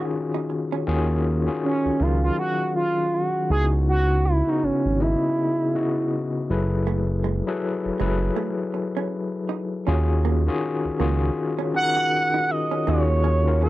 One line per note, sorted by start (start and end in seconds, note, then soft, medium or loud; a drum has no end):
0.00 0.87 D#3 medium
0.00 0.87 C#4 medium
0.00 0.88 F4 medium
0.00 0.88 F#4 medium
0.00 0.87 G#4 medium
0.00 0.88 A#4 medium
0.34 0.46 D#4 medium
0.50 muted hollow-body jazz guitar stroke soft
0.72 0.83 C#4 medium
0.87 1.49 D#2 medium
0.87 1.31 D#3 medium
0.87 1.31 C#4 medium
0.87 1.31 F4 medium
0.87 1.32 F#4 medium
0.87 1.32 G#4 loud
1.46 1.88 D#3 medium
1.46 1.89 C#4 medium
1.46 1.89 F4 medium
1.46 1.89 F#4 medium
1.46 1.89 G#4 medium
1.64 2.03 C#4 medium
1.86 1.91 C#2 soft
1.99 2.31 C#2 medium
1.99 3.15 D#3 medium
1.99 3.15 F#3 medium
1.99 3.15 C#4 medium
1.99 2.23 F4 medium
1.99 3.16 A#4 medium
1.99 3.15 F5 medium
2.24 2.37 F4 medium
2.39 2.72 F#4 medium
2.76 3.16 F4 medium
3.14 3.50 F#4 medium
3.49 4.43 C#2 loud
3.49 4.24 C#3 medium
3.49 4.24 B3 medium
3.49 4.24 D#4 medium
3.49 4.24 E4 medium
3.49 4.25 F#4 medium
3.49 3.65 G#4 loud
3.89 4.27 F#4 loud
4.25 4.50 E4 medium
4.47 4.89 C#3 medium
4.47 4.89 B3 medium
4.47 4.89 D#4 medium
4.47 4.65 D#4 medium
4.47 4.89 E4 medium
4.47 4.90 F#4 medium
4.63 4.72 G#1 soft
4.63 5.02 C#4 medium
4.86 5.16 G#1 medium
4.99 5.60 C#3 medium
4.99 5.60 B3 medium
4.99 5.61 E4 medium
4.99 6.12 E4 medium
4.99 5.61 G#4 medium
4.99 5.61 D#5 medium
5.75 6.49 C#3 medium
5.75 6.49 B3 medium
5.75 6.49 E4 medium
5.75 6.50 F#4 medium
5.75 6.49 D#5 medium
6.50 7.43 F#1 medium
6.50 7.24 F#3 medium
6.50 7.24 E4 medium
6.50 7.25 G#4 medium
6.50 7.25 A4 medium
6.50 7.25 B4 medium
6.87 7.04 A3 medium
7.24 7.41 G#3 medium
7.47 7.89 F#3 medium
7.47 7.89 E4 medium
7.47 7.89 G#4 medium
7.47 7.89 A4 medium
7.47 7.90 B4 medium
7.86 7.91 F#1 soft
8.00 8.31 F#1 medium
8.00 9.15 F#3 medium
8.00 8.17 G#3 medium
8.00 9.15 E4 medium
8.00 9.16 G#4 medium
8.00 9.16 A4 medium
8.00 9.16 B4 medium
8.36 8.54 A3 medium
8.74 muted hollow-body jazz guitar stroke soft
8.97 9.08 C#4 medium
9.49 9.66 D#4 medium
9.87 10.49 D#2 loud
9.87 10.31 D#3 medium
9.87 10.04 C#4 medium
9.87 10.31 C#4 medium
9.87 10.31 F4 medium
9.87 10.32 F#4 medium
9.87 10.32 G#4 loud
10.25 10.42 A#3 medium
10.47 10.89 D#3 medium
10.47 10.89 C#4 medium
10.47 10.89 F4 medium
10.47 10.89 F#4 medium
10.47 10.90 G#4 medium
10.85 10.91 C#2 soft
10.99 11.30 C#2 medium
10.99 11.60 D#3 medium
10.99 11.17 A#3 medium
10.99 11.60 C#4 medium
10.99 11.61 F4 medium
10.99 11.61 F#4 medium
10.99 11.61 G#4 medium
11.59 11.70 C#4 medium
11.74 12.63 D#3 medium
11.74 12.63 C#4 medium
11.74 12.63 D#4 medium
11.74 12.63 F#4 medium
11.74 11.82 G#4 medium
11.74 12.52 F#5 loud
11.74 muted hollow-body jazz guitar stroke soft
11.82 12.67 A#4 medium
11.97 12.08 F#4 medium
12.34 12.45 D#4 medium
12.50 12.90 D#5 medium
12.50 muted hollow-body jazz guitar stroke soft
12.71 12.83 C#4 medium
12.87 13.69 D#2 loud
12.87 13.31 D#3 medium
12.87 13.04 A#3 medium
12.87 13.31 C#4 medium
12.87 13.31 F4 medium
12.87 13.32 F#4 medium
12.87 13.32 G#4 medium
12.87 13.62 C#5 loud
13.24 13.41 C#4 medium
13.47 13.69 D#3 medium
13.47 13.69 C#4 medium
13.47 13.69 F4 medium
13.47 13.69 F#4 medium
13.47 13.69 A#4 medium
13.62 13.69 A#4 medium
13.62 muted hollow-body jazz guitar stroke soft